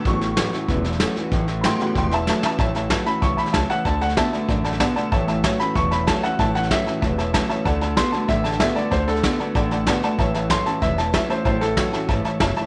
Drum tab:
HH |----p-------p---|----p-------p---|----p-------p---|----p-------p---|
SD |o-o-o-o-o-ooo-o-|o-o-o-o-o-o-o-o-|o-o-o-o-o-ooo-o-|o-ooo-o-o-ooo-o-|
BD |o-------o-------|o-------o-------|o---o---o---o---|o---o---o---o---|

HH |----p-------p---|----p-------p---|----p-------p---|----p-------p---|
SD |o-o-o-o-o-o-o-o-|o-ooo-o-o-o-o-o-|o-o-o-o-o-ooo-o-|o-ooo-o-o-o-o-o-|
BD |o---o---o---o---|o---o---o---o---|o---o---o---o---|o---o---o---o---|

HH |----p-------p---|----p-------p---|
SD |o-o-o-o-o-o-o-o-|o-o-o-o-o-o-o-o-|
BD |o---o---o---o---|o---o---o---o---|